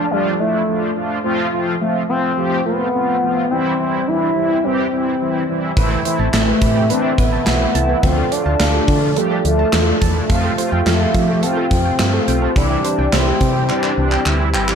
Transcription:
Already playing: D4
0.11 F3 G3 A3 D4 F4
0.39 F3 A3 D4 E4
0.67 F3 A3 D4 F4
0.96 F3 A3 D4 F4
1.24 F3 A3 C4 F4
1.52 F3 A3 C4 F4
1.81 F3 A3 C4 F4
2.09 F3 A3 C4 F4
2.37 F3 A3 C4 G4
2.65 F3 A3 B3 C4 F4
2.94 F3 A3 C4 F4
3.22 F3 A3 C4 F4
3.50 E3 G3 C4 E4
3.79 E3 G3 C4 E4
4.07 E3 G3 C4 D4 E4
4.35 E3 G3 C4 E4
4.64 E3 G3 C4 G4
4.92 E3 G3 C4 E4
5.20 E3 G3 C4 E4
5.49 E3 G3 C4 E4
5.77 A1 E3 A3 C4 E4 A4 B4 E5, kick, closed hi-hat
5.91 B4
6.05 E3 A3 C4 E4 C5, closed hi-hat
6.19 A1 A5
6.33 A1 E3 A3 C4 E4 E5, snare, clap, closed hi-hat
6.48 B4
6.61 A2 E3 A3 C4 G4 B4, kick, closed hi-hat
6.76 B4
6.90 E3 A3 C4 D4 B4, closed hi-hat
7.04 B4
7.18 A1 E3 A3 B3 C4 E4, kick, closed hi-hat
7.33 A5
7.46 B1 E3 A3 C4 E4, snare, clap, closed hi-hat
7.61 B4
7.75 C2 E3 A3 C4 E4 A5, closed hi-hat
7.89 B4
8.03 D2 D3 F3 A3 C4 D4 F4 A4, kick, closed hi-hat
8.18 A4
8.31 F3 A3 D4 F4 D5, closed hi-hat
8.46 D2 A5
8.60 D2 F3 A3 D4 G4 F5, snare, clap, closed hi-hat
8.74 A4
8.88 D3 F3 A3 D4 F4 A4, kick, open hi-hat
9.02 A4
9.16 F3 G3 A3 D4 G4 A4, closed hi-hat
9.31 A4
9.45 D2 F3 A3 D4 F4, closed hi-hat
9.59 A5
9.73 E2 F3 A3 D4 F4, snare, clap, closed hi-hat
9.87 A4
10.01 E2 F3 A3 D4 E4 A5, kick, closed hi-hat
10.15 A4
10.30 F2 F3 A3 C4 F4 G4 A4 F5, kick, closed hi-hat
10.44 A4
10.58 F3 A3 C4 F4 C5, closed hi-hat
10.72 F2 G5
10.86 F2 F3 A3 C4 F4 F5, snare, clap, closed hi-hat
11.01 A4
11.14 F3 A3 C4 G4 A4, kick, closed hi-hat
11.29 A4
11.43 F3 A3 C4 F4 A4, closed hi-hat
11.57 A4
11.71 F2 F3 A3 C4 F4, kick, closed hi-hat
11.85 G5
11.99 G2 F3 A3 C4 F4, snare, clap, closed hi-hat
12.14 A4
12.28 B1 F3 A3 C4 F4 G5, closed hi-hat
12.42 A4
12.56 C2 C3 E3 G3 C4 D4 E4 G4, kick, closed hi-hat
12.70 G4
12.84 E3 G3 C4 D4 C5, closed hi-hat
12.99 C2 G5
13.13 C2 E3 G3 C4 E4 E5, snare, clap, closed hi-hat
13.27 G4
13.41 C3 E3 G3 C4 G4, kick, closed hi-hat
13.55 G4
13.69 E3 G3 C4 D4 G4, clap
13.83 G4, clap
13.98 C2 E3 G3 C4 D4
14.12 G5, clap
14.26 D2 E3 G3 C4 E4, clap
14.40 G4
14.54 G1 E3 G3 C4 E4 G5, clap
14.68 G4, clap

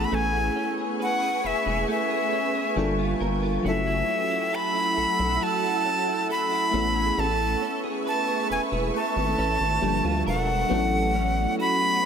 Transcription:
Already playing: A3 B3 C#4 E4 G#4 B4 G#5 C#6
0.04 B5
0.12 A1 A3 G#5
0.34 G#4
0.56 C#4
0.78 G#4
1.00 B4 F#5
1.22 G#4
1.44 E1 B4 E5
1.66 E1 G#4
1.88 A3 E5
2.10 G#4
2.32 C#4
2.54 G#4
2.76 G1 G3 A#3 D4 F4 A4
2.98 F4
3.20 G1 A#4
3.43 F4
3.62 F#1 F#3 A3 C#4 A4 F#5 E6
3.66 E4 A4 E5
3.87 E4
4.09 C#4
4.31 E4
4.53 A4 B5
4.75 E4
4.97 B1 A4
5.19 B1 E4
5.41 F#3 A5
5.63 E4
5.85 C#4
6.07 E4
6.29 A4 B5
6.51 E4
6.71 A1 A3 B3 C#4 B4 E5 C#6
6.76 E4 A4
6.95 G#4
7.18 A1 A3 A5
7.62 C#4
7.84 G#4
8.06 B4 A5
8.28 G#4
8.50 E1 B4 G#5
8.72 E1 G#4
8.94 A3 A5
9.16 G#1
9.38 A1 C#4
9.60 G#1
9.82 G1 F3 G3 A#3 D4 A4
10.04 D2 F4
10.26 E1 A#4 F#5
10.68 A1 F#3 A3 B3 C#4 B4 F#5 C#6
10.73 E4 A4
11.15 C#4
11.59 F#4 B5

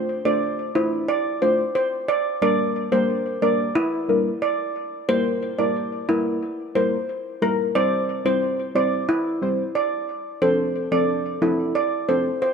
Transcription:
Already playing: A3 D4 F4 C5
0.25 A3 D4 F4 C5 D5
0.75 A3 D4 E4 F4 C5
1.08 D5
1.42 A3 D4 F4 C5
1.75 C5
2.08 D5
2.42 G3 A#3 D4 A#4 D5
2.92 G3 A#3 D4 A#4 C5
3.42 G3 A#3 D4 A#4 D5
3.75 E4
4.09 G3 A#3 D4 A#4
4.42 D5
5.09 G3 A#3 E4 A#4 C5
5.59 G3 A#3 E4 A#4 D5
6.09 G3 A#3 E4 A#4
6.75 G3 A#3 E4 A#4 C5
7.42 G3 A#3 E4 A#4
7.75 G3 C4 E4 C5 D5
8.25 G3 C4 E4 C5
8.75 G3 C4 E4 C5 D5
9.09 E4
9.42 G3 C4 E4 C5
9.75 D5
10.42 F3 C4 D4 A4 C5
10.92 F3 C4 D4 A4 D5
11.42 F3 C4 D4 E4 A4
11.75 D5
12.08 F3 C4 D4 A4 C5
12.42 C5

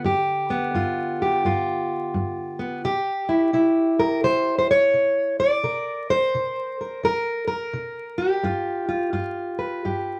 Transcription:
Already playing: D3
0.04 G2 G4
0.50 B3
0.74 G2 F4
1.22 G4
1.45 G2 F4
2.14 G2
2.59 B3
2.85 C3 G4
3.29 E4
3.53 C3 E4
3.99 A#4
4.24 C3 C5
4.58 C5
4.71 C#5
4.94 C3
5.40 D5
5.63 C3 A#4
6.10 C5
6.35 C3
6.81 A#4
7.03 C3 A#4
7.48 A#4
7.73 C3
8.18 G4
8.43 G2 F4
8.89 F4
9.13 G2 F4
9.59 B4
9.85 G2 G4

